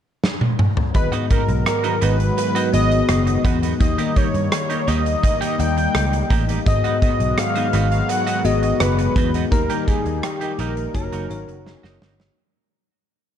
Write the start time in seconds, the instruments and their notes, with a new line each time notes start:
0.24 snare
0.41 high tom
0.59 mid tom
0.77 floor tom
0.94 picked electric bass G#1, tine electric piano G#2 B3 F#4 G#4 D#5, analog synth pad D#3 F#3 G#3 B3 F#4, analog synth lead B4, muted clean electric guitar stroke, kick, closed hi-hat
1.12 clean electric guitar B3 D#4 F#4, closed hi-hat
1.30 clean electric guitar B3 D#4 F#4, analog synth lead A#4, kick, closed hi-hat
1.48 picked electric bass B1, muted clean electric guitar stroke, closed hi-hat
1.66 analog synth lead A#4, muted clean electric guitar stroke, cross-stick, closed hi-hat
1.84 clean electric guitar B3 D#4 F#4, closed hi-hat
2.01 picked electric bass G#1, clean electric guitar B3 D#4 F#4, analog synth lead B4, closed hi-hat
2.19 muted clean electric guitar stroke, closed hi-hat
2.37 analog synth lead B4, muted clean electric guitar stroke, closed hi-hat
2.55 clean electric guitar B3 D#4 F#4, closed hi-hat
2.73 picked electric bass G#1, tine electric piano B3 F#4 G#4 D#5, analog synth lead D#5, muted clean electric guitar stroke, closed hi-hat
2.91 muted clean electric guitar stroke, closed hi-hat
3.09 picked electric bass F#1, muted clean electric guitar stroke, cross-stick, closed hi-hat
3.27 muted clean electric guitar stroke, closed hi-hat
3.45 picked electric bass E2, clean electric guitar B3 D#4 F#4, kick, closed hi-hat
3.62 clean electric guitar B3 D#4 F#4, closed hi-hat
3.80 picked electric bass D#2, tine electric piano D#3 A#3 D#4 G4 D#5, analog synth pad G3 A#3 D#4, analog synth lead D#5, muted clean electric guitar stroke, kick, closed hi-hat
3.98 clean electric guitar A#3 D#4 G4, closed hi-hat
4.16 clean electric guitar A#3 D#4 G4, analog synth lead C#5, kick, closed hi-hat
4.34 picked electric bass G2, muted clean electric guitar stroke, closed hi-hat
4.52 analog synth lead C#5, muted clean electric guitar stroke, cross-stick, closed hi-hat
4.70 clean electric guitar A#3 D#4 G4, closed hi-hat
4.88 picked electric bass D#2, clean electric guitar A#3 D#4 G4, analog synth lead D#5, closed hi-hat
5.05 muted clean electric guitar stroke, closed hi-hat
5.23 analog synth lead D#5, muted clean electric guitar stroke, kick, closed hi-hat
5.41 clean electric guitar A#3 D#4 G4, closed hi-hat
5.59 picked electric bass D#2, tine electric piano A#3 D#4 G4 D#5, analog synth lead G5, muted clean electric guitar stroke, closed hi-hat
5.77 muted clean electric guitar stroke, closed hi-hat
5.95 picked electric bass C#2, muted clean electric guitar stroke, cross-stick, closed hi-hat
6.13 muted clean electric guitar stroke, closed hi-hat
6.30 picked electric bass A1, clean electric guitar A#3 D#4 G4, kick, closed hi-hat
6.49 clean electric guitar A#3 D#4 G4, closed hi-hat
6.66 picked electric bass G#1, tine electric piano G#2 B3 F#4 G#4 D#5, analog synth pad D#3 F#3 G#3 B3 F#4, analog synth lead D#5, muted clean electric guitar stroke, kick, closed hi-hat
6.84 clean electric guitar B3 D#4 F#4, closed hi-hat
7.02 clean electric guitar B3 D#4 F#4, analog synth lead D#5, kick, closed hi-hat
7.20 picked electric bass B1, muted clean electric guitar stroke, closed hi-hat
7.38 analog synth lead F5, muted clean electric guitar stroke, cross-stick, closed hi-hat
7.55 clean electric guitar B3 D#4 F#4, closed hi-hat
7.73 picked electric bass G#1, clean electric guitar B3 D#4 F#4, closed hi-hat
7.91 analog synth lead F5, muted clean electric guitar stroke, closed hi-hat
8.09 analog synth lead F#5, muted clean electric guitar stroke, closed hi-hat
8.27 clean electric guitar B3 D#4 F#4, closed hi-hat
8.44 picked electric bass G#1, tine electric piano B3 F#4 G#4 D#5, analog synth lead D#5, muted clean electric guitar stroke, closed hi-hat
8.63 muted clean electric guitar stroke, closed hi-hat
8.80 picked electric bass F#1, analog synth lead B4, muted clean electric guitar stroke, cross-stick, closed hi-hat
8.98 muted clean electric guitar stroke, closed hi-hat
9.16 picked electric bass E2, clean electric guitar B3 D#4 F#4, kick, closed hi-hat
9.34 clean electric guitar B3 D#4 F#4, closed hi-hat
9.51 picked electric bass D#2, tine electric piano D#3 A#3 D#4 G4 D#5, analog synth pad G3 A#3 D#4, analog synth lead A#4, muted clean electric guitar stroke, kick, closed hi-hat
9.70 clean electric guitar A#3 D#4 G4, closed hi-hat
9.87 clean electric guitar A#3 D#4 G4, analog synth lead G#4, kick, closed hi-hat
10.05 picked electric bass D#2, muted clean electric guitar stroke, closed hi-hat
10.17 analog synth lead G#4
10.22 analog synth lead G4, muted clean electric guitar stroke, cross-stick, closed hi-hat
10.41 clean electric guitar A#3 D#4 G4, closed hi-hat
10.59 picked electric bass A#1, clean electric guitar A#3 D#4 G4, analog synth lead A#4, closed hi-hat
10.77 closed hi-hat
10.94 picked electric bass F#1, analog synth pad D#3 F#3 C#4 F#4, tine electric piano A#3 D#4 F#4 C#5, analog synth lead A#4, muted clean electric guitar stroke, kick, closed hi-hat
11.12 picked electric bass F#1, clean electric guitar A#3 D#4 F#4, closed hi-hat
11.30 picked electric bass G#1, tine electric piano A#3 D#4 F#4 C#5, closed hi-hat
11.48 muted clean electric guitar stroke, closed hi-hat
11.66 muted clean electric guitar stroke, snare
11.83 picked electric bass F#1, clean electric guitar A#3 D#4 F#4, snare
12.02 picked electric bass G1, clean electric guitar A#3 D#4 F#4, snare
12.19 muted clean electric guitar stroke, snare